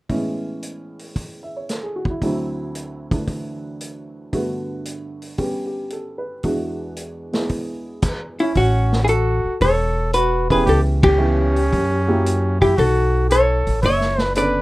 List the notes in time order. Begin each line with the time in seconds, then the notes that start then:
0.09 A2 E3 G#3 B3 C#4, kick, open hi-hat
0.63 closed hi-hat
0.99 open hi-hat
1.16 kick, open hi-hat
1.43 E5
1.56 C#5
1.69 A4, snare, closed hi-hat
1.83 G#4
1.96 F#4
2.05 kick
2.10 E4
2.22 D2 D3 F#3 C4 E4, kick, open hi-hat
2.75 closed hi-hat
3.11 D3 E3 A3 D4, kick, open hi-hat
3.27 kick, open hi-hat
3.81 closed hi-hat
4.33 G2 D3 A3 B3 F#4, kick, open hi-hat
4.85 closed hi-hat
5.22 open hi-hat
5.38 G3 B3 C#4 G4, kick, open hi-hat
5.66 G4
5.90 A4, closed hi-hat
6.18 B4
6.43 E2 E3 G#3 D4 F#4, kick, open hi-hat
6.96 closed hi-hat
7.32 G#3 B3 E4 G#4, snare, open hi-hat
7.49 kick, open hi-hat
8.02 kick, closed hi-hat, crash
8.39 C#4 E4, open hi-hat
8.55 A1 C#4 F#4, kick, open hi-hat
8.92 snare
9.03 E4 G#4
9.07 F#4 A4, closed hi-hat
9.45 muted upright bass stroke
9.61 E1 A4 C#5, kick, open hi-hat
10.13 F#4 B4, closed hi-hat
10.50 E3 B3 C#4 G4 G#4 B4, kick, open hi-hat
10.66 C#2 G4 A4, kick, open hi-hat
11.03 C#4 G4, kick, ride
11.18 E3 B3 C#4 G4
11.56 open hi-hat
11.73 F#2, kick, open hi-hat
12.07 F#3 A#3 E4 G4
12.26 closed hi-hat
12.61 E4 G4, kick, open hi-hat
12.77 B1 F#4 A4, kick, open hi-hat
13.30 A4 C#5, closed hi-hat
13.67 A1, open hi-hat
13.82 F#1 C#5 E5, kick, open hi-hat
14.01 snare
14.18 snare
14.35 D3 B3 C#4 A4 B4 D5, closed hi-hat